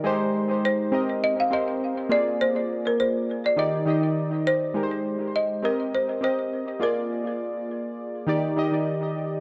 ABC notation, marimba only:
X:1
M:4/4
L:1/16
Q:"Swing 16ths" 1/4=102
K:Eb
V:1 name="Marimba"
z4 c4 e f e4 d2 | c3 B c3 d e6 c2- | c2 z2 e2 B2 c2 c4 B2- | B12- B2 z2 |]